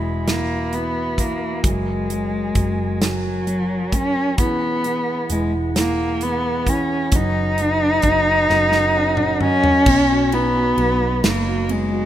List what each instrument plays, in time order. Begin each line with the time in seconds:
Already playing: fingered electric bass E1, felt piano E3, cello G#3, tonewheel organ F#4 E5 B5
0.28 felt piano E3, cello A#3, snare, closed hi-hat
0.73 felt piano E3, cello B3, closed hi-hat
1.18 felt piano E3, cello A#3, kick, closed hi-hat
1.63 fingered electric bass F#1, felt piano F#3, cello G#3, tonewheel organ A#4 G#5, kick, closed hi-hat
2.10 felt piano F#3, closed hi-hat
2.55 fingered electric bass F#1, felt piano F#3, kick, closed hi-hat
2.97 cello G#3
3.02 cello F#3, felt piano F#3, snare, closed hi-hat
3.47 felt piano F#3, closed hi-hat
3.92 felt piano F#3, cello C#4, kick, closed hi-hat
4.38 fingered electric bass E1, felt piano E3, cello B3, tonewheel organ E4 G#4 F#5, kick, closed hi-hat
4.84 felt piano E3, closed hi-hat
5.30 fingered electric bass E1, felt piano E3, cello G#3, closed hi-hat
5.76 felt piano E3, cello A#3, snare, closed hi-hat
6.21 felt piano E3, cello B3, closed hi-hat
6.67 felt piano E3, cello C#4, kick, closed hi-hat
7.12 fingered electric bass F#1, felt piano F#3, tonewheel organ D#4 B4, cello D#4, kick, closed hi-hat
7.58 felt piano F#3, closed hi-hat
8.02 fingered electric bass F#1, kick, closed hi-hat
8.07 felt piano F#3
8.49 fingered electric bass F#1, felt piano F#3, tonewheel organ C#4 A#4 F#5, snare
8.72 snare
8.96 felt piano C#4 F#5
9.17 mid tom
9.41 felt piano F#3 D#5, cello C#4, mid tom
9.64 floor tom
9.86 fingered electric bass B1, felt piano B2, kick, crash
10.11 felt piano F#4
10.32 cello B3, felt piano D#4, ride
10.56 felt piano F#4
10.77 fingered electric bass B1, felt piano F#3, ride
11.01 felt piano F#4
11.23 fingered electric bass F#1, cello A#3, snare, ride
11.47 felt piano F#4
11.69 cello G#3, felt piano B3, ride
11.93 felt piano F#4